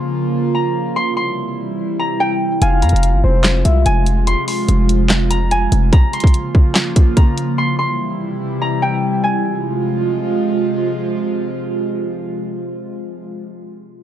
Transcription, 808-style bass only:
0, 0, Header, 1, 2, 480
1, 0, Start_track
1, 0, Key_signature, -4, "minor"
1, 0, Tempo, 413793
1, 1115, Time_signature, 4, 2, 24, 8
1, 16276, End_track
2, 0, Start_track
2, 0, Title_t, "808-style bass"
2, 0, Program_c, 0, 38
2, 3035, Note_on_c, 0, 29, 108
2, 3275, Note_on_c, 0, 41, 99
2, 3292, Note_off_c, 0, 29, 0
2, 3389, Note_off_c, 0, 41, 0
2, 3395, Note_on_c, 0, 29, 106
2, 3634, Note_on_c, 0, 31, 102
2, 3652, Note_off_c, 0, 29, 0
2, 3749, Note_off_c, 0, 31, 0
2, 3755, Note_on_c, 0, 29, 108
2, 4216, Note_off_c, 0, 29, 0
2, 4235, Note_on_c, 0, 36, 106
2, 4465, Note_off_c, 0, 36, 0
2, 4475, Note_on_c, 0, 29, 111
2, 5051, Note_off_c, 0, 29, 0
2, 5435, Note_on_c, 0, 29, 106
2, 6588, Note_off_c, 0, 29, 0
2, 6635, Note_on_c, 0, 29, 108
2, 6865, Note_off_c, 0, 29, 0
2, 16276, End_track
0, 0, End_of_file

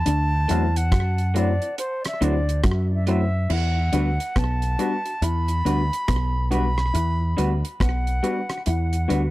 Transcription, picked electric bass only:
0, 0, Header, 1, 2, 480
1, 0, Start_track
1, 0, Key_signature, 1, "minor"
1, 0, Tempo, 859599
1, 36, Time_signature, 4, 2, 24, 8
1, 5196, End_track
2, 0, Start_track
2, 0, Title_t, "Picked electric bass"
2, 0, Program_c, 0, 34
2, 37, Note_on_c, 0, 38, 110
2, 255, Note_off_c, 0, 38, 0
2, 282, Note_on_c, 0, 40, 105
2, 516, Note_off_c, 0, 40, 0
2, 516, Note_on_c, 0, 42, 90
2, 882, Note_off_c, 0, 42, 0
2, 1237, Note_on_c, 0, 38, 79
2, 1455, Note_off_c, 0, 38, 0
2, 1476, Note_on_c, 0, 42, 97
2, 1933, Note_off_c, 0, 42, 0
2, 1954, Note_on_c, 0, 40, 104
2, 2173, Note_off_c, 0, 40, 0
2, 2193, Note_on_c, 0, 38, 86
2, 2329, Note_off_c, 0, 38, 0
2, 2438, Note_on_c, 0, 35, 90
2, 2655, Note_off_c, 0, 35, 0
2, 2915, Note_on_c, 0, 40, 94
2, 3134, Note_off_c, 0, 40, 0
2, 3156, Note_on_c, 0, 38, 77
2, 3291, Note_off_c, 0, 38, 0
2, 3401, Note_on_c, 0, 35, 83
2, 3856, Note_off_c, 0, 35, 0
2, 3880, Note_on_c, 0, 40, 104
2, 4097, Note_off_c, 0, 40, 0
2, 4122, Note_on_c, 0, 38, 86
2, 4255, Note_off_c, 0, 38, 0
2, 4359, Note_on_c, 0, 35, 90
2, 4576, Note_off_c, 0, 35, 0
2, 4842, Note_on_c, 0, 40, 99
2, 5058, Note_off_c, 0, 40, 0
2, 5083, Note_on_c, 0, 38, 86
2, 5196, Note_off_c, 0, 38, 0
2, 5196, End_track
0, 0, End_of_file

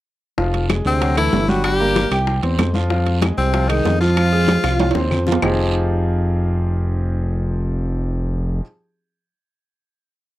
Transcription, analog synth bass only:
0, 0, Header, 1, 2, 480
1, 0, Start_track
1, 0, Key_signature, -4, "minor"
1, 0, Tempo, 314961
1, 582, Time_signature, 4, 2, 24, 8
1, 15821, End_track
2, 0, Start_track
2, 0, Title_t, "Analog synth bass"
2, 0, Program_c, 0, 38
2, 576, Note_on_c, 0, 29, 82
2, 1248, Note_off_c, 0, 29, 0
2, 1301, Note_on_c, 0, 38, 88
2, 1971, Note_off_c, 0, 38, 0
2, 2024, Note_on_c, 0, 31, 89
2, 3139, Note_off_c, 0, 31, 0
2, 3217, Note_on_c, 0, 36, 85
2, 3667, Note_off_c, 0, 36, 0
2, 3704, Note_on_c, 0, 40, 74
2, 3927, Note_off_c, 0, 40, 0
2, 3947, Note_on_c, 0, 41, 88
2, 5062, Note_off_c, 0, 41, 0
2, 5148, Note_on_c, 0, 36, 89
2, 5818, Note_off_c, 0, 36, 0
2, 5869, Note_on_c, 0, 41, 97
2, 6984, Note_off_c, 0, 41, 0
2, 7069, Note_on_c, 0, 36, 91
2, 7515, Note_off_c, 0, 36, 0
2, 7545, Note_on_c, 0, 39, 69
2, 7770, Note_off_c, 0, 39, 0
2, 7781, Note_on_c, 0, 41, 83
2, 8209, Note_off_c, 0, 41, 0
2, 8263, Note_on_c, 0, 29, 98
2, 13121, Note_off_c, 0, 29, 0
2, 15821, End_track
0, 0, End_of_file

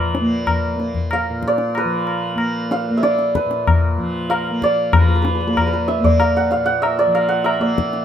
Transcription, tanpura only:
0, 0, Header, 1, 2, 480
1, 0, Start_track
1, 0, Tempo, 634921
1, 1808, Time_signature, 4, 2, 24, 8
1, 6085, End_track
2, 0, Start_track
2, 0, Title_t, "Tanpura"
2, 0, Program_c, 0, 104
2, 0, Note_on_c, 0, 46, 54
2, 0, Note_on_c, 0, 53, 58
2, 0, Note_on_c, 0, 58, 54
2, 156, Note_off_c, 0, 58, 0
2, 156, Note_on_c, 0, 58, 63
2, 573, Note_off_c, 0, 58, 0
2, 573, Note_on_c, 0, 58, 58
2, 977, Note_off_c, 0, 46, 0
2, 980, Note_on_c, 0, 46, 65
2, 1387, Note_off_c, 0, 53, 0
2, 1390, Note_on_c, 0, 53, 58
2, 1778, Note_off_c, 0, 58, 0
2, 1778, Note_on_c, 0, 58, 69
2, 2195, Note_off_c, 0, 58, 0
2, 2195, Note_on_c, 0, 58, 53
2, 2611, Note_off_c, 0, 46, 0
2, 2614, Note_on_c, 0, 46, 57
2, 3000, Note_off_c, 0, 53, 0
2, 3003, Note_on_c, 0, 53, 66
2, 3405, Note_off_c, 0, 58, 0
2, 3405, Note_on_c, 0, 58, 62
2, 3720, Note_off_c, 0, 53, 0
2, 3720, Note_on_c, 0, 53, 70
2, 4133, Note_off_c, 0, 58, 0
2, 4133, Note_on_c, 0, 58, 63
2, 4532, Note_off_c, 0, 58, 0
2, 4532, Note_on_c, 0, 58, 68
2, 4952, Note_off_c, 0, 46, 0
2, 4955, Note_on_c, 0, 46, 63
2, 5340, Note_off_c, 0, 53, 0
2, 5340, Note_on_c, 0, 53, 65
2, 5739, Note_off_c, 0, 58, 0
2, 5742, Note_on_c, 0, 58, 66
2, 6085, Note_off_c, 0, 46, 0
2, 6085, Note_off_c, 0, 53, 0
2, 6085, Note_off_c, 0, 58, 0
2, 6085, End_track
0, 0, End_of_file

